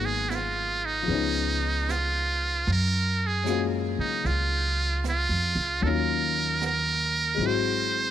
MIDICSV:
0, 0, Header, 1, 5, 480
1, 0, Start_track
1, 0, Tempo, 788436
1, 1622, Time_signature, 4, 2, 24, 8
1, 4936, End_track
2, 0, Start_track
2, 0, Title_t, "Muted trumpet"
2, 0, Program_c, 0, 59
2, 32, Note_on_c, 0, 68, 67
2, 181, Note_on_c, 0, 64, 45
2, 191, Note_off_c, 0, 68, 0
2, 214, Note_on_c, 0, 65, 75
2, 223, Note_off_c, 0, 64, 0
2, 520, Note_on_c, 0, 63, 78
2, 529, Note_off_c, 0, 65, 0
2, 1164, Note_on_c, 0, 65, 73
2, 1174, Note_off_c, 0, 63, 0
2, 1633, Note_off_c, 0, 65, 0
2, 1660, Note_on_c, 0, 70, 86
2, 1988, Note_on_c, 0, 68, 70
2, 1997, Note_off_c, 0, 70, 0
2, 2226, Note_off_c, 0, 68, 0
2, 2437, Note_on_c, 0, 63, 68
2, 2595, Note_on_c, 0, 65, 80
2, 2604, Note_off_c, 0, 63, 0
2, 3068, Note_off_c, 0, 65, 0
2, 3099, Note_on_c, 0, 65, 85
2, 3550, Note_on_c, 0, 69, 56
2, 3559, Note_off_c, 0, 65, 0
2, 3571, Note_on_c, 0, 70, 86
2, 3580, Note_off_c, 0, 69, 0
2, 4037, Note_off_c, 0, 70, 0
2, 4056, Note_on_c, 0, 70, 81
2, 4542, Note_on_c, 0, 72, 83
2, 4551, Note_off_c, 0, 70, 0
2, 4936, Note_off_c, 0, 72, 0
2, 4936, End_track
3, 0, Start_track
3, 0, Title_t, "Grand piano"
3, 0, Program_c, 1, 0
3, 0, Control_c, 1, 64, 127
3, 0, Note_on_c, 1, 54, 37
3, 0, Note_on_c, 1, 56, 41
3, 0, Note_on_c, 1, 58, 36
3, 0, Note_on_c, 1, 59, 40
3, 0, Note_on_c, 1, 63, 45
3, 622, Note_on_c, 1, 53, 40
3, 635, Note_off_c, 1, 56, 0
3, 644, Note_on_c, 1, 56, 36
3, 651, Note_off_c, 1, 54, 0
3, 651, Note_off_c, 1, 59, 0
3, 658, Note_off_c, 1, 58, 0
3, 660, Note_on_c, 1, 59, 42
3, 666, Note_off_c, 1, 63, 0
3, 671, Control_c, 1, 64, 0
3, 673, Note_on_c, 1, 61, 39
3, 690, Note_on_c, 1, 63, 45
3, 775, Control_c, 1, 64, 127
3, 1602, Note_off_c, 1, 53, 0
3, 1613, Note_off_c, 1, 56, 0
3, 1621, Note_off_c, 1, 59, 0
3, 1627, Note_off_c, 1, 61, 0
3, 1629, Control_c, 1, 64, 0
3, 1636, Note_off_c, 1, 63, 0
3, 1749, Control_c, 1, 64, 127
3, 2093, Note_on_c, 1, 54, 46
3, 2108, Note_on_c, 1, 56, 44
3, 2118, Note_on_c, 1, 58, 41
3, 2119, Note_on_c, 1, 61, 43
3, 2128, Note_on_c, 1, 65, 46
3, 3529, Note_off_c, 1, 54, 0
3, 3539, Note_on_c, 1, 54, 41
3, 3540, Note_off_c, 1, 58, 0
3, 3545, Note_off_c, 1, 56, 0
3, 3549, Note_on_c, 1, 58, 38
3, 3551, Note_off_c, 1, 61, 0
3, 3551, Control_c, 1, 64, 0
3, 3555, Note_off_c, 1, 65, 0
3, 3563, Note_on_c, 1, 61, 43
3, 3566, Note_on_c, 1, 63, 40
3, 3575, Note_on_c, 1, 65, 46
3, 3652, Control_c, 1, 64, 127
3, 4472, Note_on_c, 1, 56, 45
3, 4476, Note_off_c, 1, 54, 0
3, 4485, Note_on_c, 1, 54, 40
3, 4506, Note_on_c, 1, 60, 43
3, 4507, Note_off_c, 1, 58, 0
3, 4512, Control_c, 1, 64, 0
3, 4514, Note_off_c, 1, 61, 0
3, 4515, Note_off_c, 1, 63, 0
3, 4519, Note_on_c, 1, 64, 37
3, 4520, Note_off_c, 1, 65, 0
3, 4538, Note_on_c, 1, 66, 54
3, 4614, Control_c, 1, 64, 127
3, 4936, Note_off_c, 1, 54, 0
3, 4936, Note_off_c, 1, 56, 0
3, 4936, Note_off_c, 1, 60, 0
3, 4936, Note_off_c, 1, 64, 0
3, 4936, Note_off_c, 1, 66, 0
3, 4936, End_track
4, 0, Start_track
4, 0, Title_t, "Upright bass"
4, 0, Program_c, 2, 32
4, 0, Note_on_c, 2, 32, 62
4, 636, Note_off_c, 2, 32, 0
4, 657, Note_on_c, 2, 37, 66
4, 1595, Note_off_c, 2, 37, 0
4, 1627, Note_on_c, 2, 42, 70
4, 2400, Note_off_c, 2, 42, 0
4, 2426, Note_on_c, 2, 49, 55
4, 2573, Note_off_c, 2, 49, 0
4, 2584, Note_on_c, 2, 37, 62
4, 3199, Note_off_c, 2, 37, 0
4, 3222, Note_on_c, 2, 41, 51
4, 3371, Note_off_c, 2, 41, 0
4, 3381, Note_on_c, 2, 37, 58
4, 3531, Note_off_c, 2, 37, 0
4, 3545, Note_on_c, 2, 39, 72
4, 4481, Note_off_c, 2, 39, 0
4, 4497, Note_on_c, 2, 32, 66
4, 4936, Note_off_c, 2, 32, 0
4, 4936, End_track
5, 0, Start_track
5, 0, Title_t, "Drums"
5, 186, Note_on_c, 9, 38, 36
5, 186, Note_on_c, 9, 44, 40
5, 246, Note_off_c, 9, 38, 0
5, 246, Note_off_c, 9, 44, 0
5, 669, Note_on_c, 9, 25, 35
5, 1150, Note_on_c, 9, 38, 39
5, 1150, Note_on_c, 9, 44, 46
5, 1211, Note_off_c, 9, 38, 0
5, 1211, Note_off_c, 9, 44, 0
5, 1629, Note_off_c, 9, 25, 0
5, 1629, Note_on_c, 9, 25, 28
5, 1629, Note_on_c, 9, 38, 22
5, 1690, Note_off_c, 9, 38, 0
5, 2107, Note_on_c, 9, 38, 38
5, 2107, Note_on_c, 9, 44, 41
5, 2168, Note_off_c, 9, 38, 0
5, 2168, Note_off_c, 9, 44, 0
5, 2587, Note_off_c, 9, 25, 0
5, 2587, Note_on_c, 9, 25, 33
5, 2587, Note_on_c, 9, 38, 24
5, 2648, Note_off_c, 9, 38, 0
5, 3069, Note_on_c, 9, 38, 36
5, 3069, Note_on_c, 9, 44, 47
5, 3130, Note_off_c, 9, 38, 0
5, 3130, Note_off_c, 9, 44, 0
5, 3550, Note_off_c, 9, 25, 0
5, 3550, Note_on_c, 9, 25, 31
5, 4029, Note_on_c, 9, 38, 40
5, 4029, Note_on_c, 9, 44, 48
5, 4089, Note_off_c, 9, 38, 0
5, 4089, Note_off_c, 9, 44, 0
5, 4508, Note_off_c, 9, 25, 0
5, 4508, Note_on_c, 9, 25, 32
5, 4936, Note_off_c, 9, 25, 0
5, 4936, End_track
0, 0, End_of_file